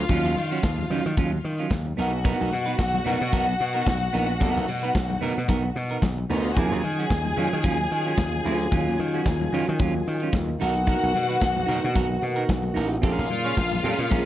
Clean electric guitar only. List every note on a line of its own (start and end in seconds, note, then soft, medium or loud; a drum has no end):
0.09 0.34 F#3 medium
0.09 0.35 C#4 medium
0.09 0.35 F4 medium
0.36 muted clean electric guitar stroke soft
0.51 0.62 F#3 medium
0.51 0.63 C#4 medium
0.51 0.64 F#4 medium
0.79 muted clean electric guitar stroke soft
0.91 1.11 F#3 medium
0.91 1.06 C#4 medium
0.91 1.04 F4 medium
1.06 muted clean electric guitar stroke soft
1.17 1.37 F#3 medium
1.17 1.32 C#4 medium
1.17 1.31 F4 medium
1.33 muted clean electric guitar stroke soft
1.44 muted clean electric guitar stroke soft
1.59 1.74 F#3 soft
1.59 1.73 C#4 medium
1.59 1.73 F4 medium
1.86 muted clean electric guitar stroke soft
1.97 2.18 B3 medium
1.97 2.13 D#4 medium
1.97 2.12 A#4 medium
2.13 muted clean electric guitar stroke soft
2.24 2.50 B3 medium
2.24 2.50 D#4 medium
2.24 2.51 A#4 medium
2.51 muted clean electric guitar stroke soft
2.66 2.76 B3 soft
2.66 2.77 D#4 medium
2.66 2.78 B4 medium
2.78 muted clean electric guitar stroke soft
2.93 muted clean electric guitar stroke soft
3.05 3.26 B3 medium
3.05 3.21 D#4 medium
3.05 3.19 A#4 loud
3.20 muted clean electric guitar stroke medium
3.32 3.53 B3 medium
3.32 3.48 D#4 medium
3.32 3.46 A#4 medium
3.47 muted clean electric guitar stroke soft
3.60 muted clean electric guitar stroke soft
3.74 3.89 B3 soft
3.74 3.89 D#4 medium
3.74 3.88 A#4 medium
4.01 muted clean electric guitar stroke soft
4.13 4.34 B3 medium
4.13 4.28 D#4 medium
4.13 4.27 A#4 medium
4.28 muted clean electric guitar stroke soft
4.40 4.51 A#3 medium
4.40 4.52 D4 medium
4.40 4.66 A#4 medium
4.51 4.65 B3 medium
4.51 4.66 D#4 medium
4.67 muted clean electric guitar stroke soft
4.83 4.93 B3 medium
4.83 4.94 D#4 medium
4.83 4.95 B4 medium
4.94 muted clean electric guitar stroke soft
5.10 muted clean electric guitar stroke soft
5.21 5.41 B3 medium
5.21 5.37 D#4 medium
5.21 5.36 A#4 medium
5.37 muted clean electric guitar stroke soft
5.48 5.69 B3 medium
5.48 5.64 D#4 medium
5.48 5.63 A#4 medium
5.64 muted clean electric guitar stroke soft
5.76 muted clean electric guitar stroke soft
5.91 6.05 B3 soft
5.91 6.05 D#4 medium
5.91 6.04 A#4 medium
6.18 muted clean electric guitar stroke soft
6.30 6.50 B3 medium
6.30 6.45 D#4 medium
6.30 6.44 A#4 medium
6.45 muted clean electric guitar stroke soft
6.57 6.82 F#3 medium
6.57 6.82 C#4 medium
6.57 6.83 F4 medium
6.83 muted clean electric guitar stroke soft
6.99 7.09 F#3 medium
6.99 7.10 C#4 medium
6.99 7.11 F#4 medium
7.10 muted clean electric guitar stroke soft
7.25 muted clean electric guitar stroke soft
7.36 7.57 F#3 medium
7.36 7.52 C#4 medium
7.36 7.51 F4 medium
7.52 muted clean electric guitar stroke medium
7.64 7.84 F#3 medium
7.64 7.79 C#4 medium
7.64 7.78 F4 medium
7.79 muted clean electric guitar stroke soft
7.91 muted clean electric guitar stroke soft
8.06 8.21 F#3 soft
8.06 8.20 C#4 medium
8.06 8.20 F4 medium
8.33 muted clean electric guitar stroke soft
8.44 8.65 F#3 medium
8.44 8.60 C#4 medium
8.44 8.59 F4 medium
8.60 muted clean electric guitar stroke soft
8.71 8.97 F#3 medium
8.71 8.97 C#4 medium
8.71 8.97 F4 medium
8.99 muted clean electric guitar stroke soft
9.14 9.24 F#3 soft
9.14 9.26 C#4 medium
9.14 9.27 F#4 medium
9.26 muted clean electric guitar stroke soft
9.41 muted clean electric guitar stroke soft
9.53 9.73 F#3 medium
9.53 9.68 C#4 medium
9.53 9.67 F4 medium
9.68 muted clean electric guitar stroke soft
9.80 10.00 F#3 medium
9.80 9.95 C#4 medium
9.80 9.94 F4 medium
9.95 muted clean electric guitar stroke soft
10.07 muted clean electric guitar stroke soft
10.22 10.37 F#3 soft
10.22 10.36 C#4 medium
10.22 10.36 F4 medium
10.49 muted clean electric guitar stroke soft
10.60 10.81 D#4 medium
10.60 10.75 F#4 medium
10.60 10.74 A#4 loud
10.75 muted clean electric guitar stroke soft
10.87 11.12 D#4 medium
10.87 11.13 F#4 medium
10.87 11.14 A#4 medium
11.14 muted clean electric guitar stroke soft
11.29 11.39 D#4 medium
11.29 11.40 F#4 medium
11.29 11.42 B4 medium
11.56 muted clean electric guitar stroke soft
11.66 11.88 D#4 medium
11.66 11.83 F#4 medium
11.66 11.82 A#4 medium
11.83 muted clean electric guitar stroke soft
11.94 12.15 D#4 medium
11.94 12.09 F#4 medium
11.94 12.08 A#4 medium
12.09 muted clean electric guitar stroke soft
12.21 muted clean electric guitar stroke soft
12.36 12.51 D#4 soft
12.36 12.51 F#4 medium
12.36 12.50 A#4 medium
12.63 muted clean electric guitar stroke soft
12.74 12.95 D#4 medium
12.74 12.90 F#4 medium
12.74 12.88 A#4 medium
12.89 muted clean electric guitar stroke soft
13.02 13.13 C4 medium
13.02 13.14 G4 medium
13.02 13.28 A#4 medium
13.13 13.28 C#4 medium
13.13 13.28 G#4 medium
13.29 muted clean electric guitar stroke soft
13.44 13.55 C#4 medium
13.44 13.56 G#4 medium
13.44 13.57 C#5 medium
13.56 muted clean electric guitar stroke soft
13.72 muted clean electric guitar stroke soft
13.83 14.04 C#4 medium
13.83 13.99 G#4 medium
13.83 13.98 A#4 medium
13.99 muted clean electric guitar stroke medium
14.10 14.25 C#4 medium
14.10 14.25 G#4 medium
14.10 14.24 A#4 medium